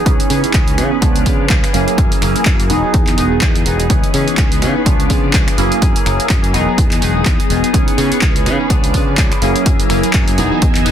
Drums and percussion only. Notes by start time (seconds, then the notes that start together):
0.06 kick, closed hi-hat
0.20 closed hi-hat
0.30 open hi-hat, tambourine
0.44 closed hi-hat, tambourine
0.54 kick, clap, closed hi-hat
0.68 closed hi-hat, tambourine
0.78 finger snap, open hi-hat, tambourine
0.92 tambourine
1.02 kick, closed hi-hat
1.16 closed hi-hat
1.26 kick, open hi-hat, tambourine
1.40 tambourine
1.50 kick, clap, closed hi-hat
1.64 finger snap, closed hi-hat
1.74 open hi-hat, tambourine
1.87 closed hi-hat, tambourine
1.98 kick, closed hi-hat
2.12 closed hi-hat, tambourine
2.22 finger snap, open hi-hat, tambourine
2.36 closed hi-hat, tambourine
2.45 kick, clap, closed hi-hat
2.60 closed hi-hat, tambourine
2.70 open hi-hat, tambourine
2.84 tambourine
2.94 kick, closed hi-hat, tambourine
3.07 clap, closed hi-hat
3.18 open hi-hat, tambourine
3.32 tambourine
3.41 kick, clap, closed hi-hat
3.56 closed hi-hat
3.66 open hi-hat, tambourine
3.80 closed hi-hat, tambourine
3.90 kick, closed hi-hat, tambourine
4.04 closed hi-hat, tambourine
4.14 open hi-hat, tambourine
4.28 closed hi-hat, tambourine
4.37 kick, clap, closed hi-hat
4.52 closed hi-hat, tambourine
4.62 finger snap, open hi-hat, tambourine
4.76 tambourine
4.86 kick, closed hi-hat
4.99 closed hi-hat, tambourine
5.09 kick, open hi-hat, tambourine
5.24 tambourine
5.33 kick, clap, closed hi-hat
5.48 finger snap, closed hi-hat, tambourine
5.58 open hi-hat, tambourine
5.71 closed hi-hat, tambourine
5.82 kick, closed hi-hat, tambourine
5.96 closed hi-hat
6.06 finger snap, open hi-hat, tambourine
6.20 closed hi-hat, tambourine
6.30 kick, clap, closed hi-hat
6.43 closed hi-hat, tambourine
6.54 open hi-hat, tambourine
6.69 tambourine
6.78 kick, closed hi-hat
6.91 clap, closed hi-hat, tambourine
7.01 open hi-hat, tambourine
7.17 tambourine
7.26 kick, clap, closed hi-hat, tambourine
7.40 closed hi-hat, tambourine
7.50 open hi-hat, tambourine
7.64 closed hi-hat, tambourine
7.74 kick, closed hi-hat, tambourine
7.88 closed hi-hat, tambourine
7.98 open hi-hat, tambourine
8.12 closed hi-hat, tambourine
8.22 kick, clap, closed hi-hat
8.36 closed hi-hat, tambourine
8.46 finger snap, open hi-hat, tambourine
8.59 tambourine
8.70 kick, closed hi-hat, tambourine
8.83 closed hi-hat, tambourine
8.94 kick, open hi-hat, tambourine
9.08 tambourine
9.18 kick, clap, closed hi-hat, tambourine
9.32 finger snap, closed hi-hat, tambourine
9.42 open hi-hat, tambourine
9.55 closed hi-hat, tambourine
9.66 kick, closed hi-hat, tambourine
9.79 closed hi-hat, tambourine
9.90 finger snap, open hi-hat, tambourine
10.03 closed hi-hat, tambourine
10.13 kick, clap, closed hi-hat
10.28 closed hi-hat, tambourine
10.38 open hi-hat, tambourine
10.52 tambourine
10.62 kick, closed hi-hat
10.75 clap, closed hi-hat
10.86 open hi-hat, tambourine